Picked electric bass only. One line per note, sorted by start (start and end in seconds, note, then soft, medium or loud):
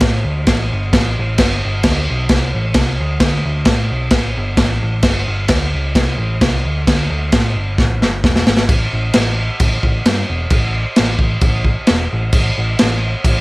0.02 0.23 A2 medium
0.24 0.46 D2 medium
0.48 0.69 A1 medium
0.72 0.93 G1 medium
0.94 1.15 A1 medium
1.19 1.38 A1 loud
1.39 1.61 G1 loud
1.65 1.84 G1 medium
1.84 2.06 D2 medium
2.10 2.29 B1 medium
2.29 2.51 C2 loud
2.55 2.76 A1 medium
2.76 2.98 C2 loud
3.00 3.19 D2 medium
3.20 3.42 D2 loud
3.46 3.66 D2 medium
3.66 3.88 A2 loud
3.91 4.12 B1 medium
4.12 4.34 A1 medium
4.37 4.58 G1 medium
4.58 4.80 A1 medium
4.83 5.03 A1 loud
5.04 5.26 G1 loud
5.28 5.49 G1 loud
5.50 5.71 D2 medium
5.74 5.95 C#2 medium
5.95 6.17 C2 medium
6.18 6.40 A1 loud
6.42 6.63 C2 medium
6.65 6.86 D2 medium
6.87 7.09 D2 loud
7.10 7.32 D2 loud
7.34 7.54 A2 loud
7.54 7.76 G1 medium
7.79 8.00 A1 loud
8.01 8.23 G1 medium
8.25 8.46 E1 medium
8.47 8.68 G#1 medium
8.69 8.85 A1 medium
8.93 9.09 A1 medium
9.16 9.48 A1 medium
9.60 9.77 A1 loud
9.84 10.00 A1 medium
10.06 10.22 G2 medium
10.29 10.46 E1 loud
10.51 10.84 A1 loud
10.99 11.15 A1 medium
11.19 11.36 A1 medium
11.42 11.75 A1 medium
11.90 12.06 E1 medium
12.13 12.29 A1 medium
12.33 12.50 A1 loud
12.58 12.74 A1 medium
12.82 13.14 A1 loud
13.25 13.41 A1 loud